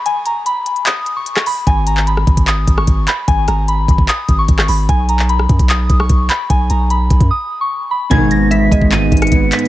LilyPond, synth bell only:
\new Staff \with { instrumentName = "Synth bell" } { \time 4/4 \key gis \minor \tempo 4 = 149 gis''8 ais''8 b''4 dis'''8. cis'''8. b''8 | gis''8 ais''8 b''4 dis'''8. cis'''8. b''8 | gis''8 ais''8 b''4 dis'''8. cis'''8. b''8 | gis''8 ais''8 b''4 dis'''8. cis'''8. b''8 |
gis''8 ais''8 b''4 dis'''8. cis'''8. b''8 | gis'''8 ais'''8 b'''4 dis''''8. cis''''8. b'''8 | }